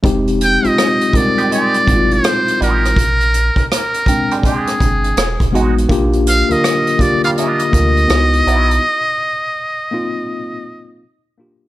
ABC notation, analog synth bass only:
X:1
M:4/4
L:1/16
Q:"Swing 16ths" 1/4=82
K:Fdor
V:1 name="Analog synth bass" clef=bass
F,,,3 A,,, z6 A,,,2 z2 =A,,,2 | B,,,3 G,,, z6 G,,,2 =E,,, E,,, =A,,,2 | B,,,3 D,, z6 D,,2 _D,,2 _C,,2 | z16 |]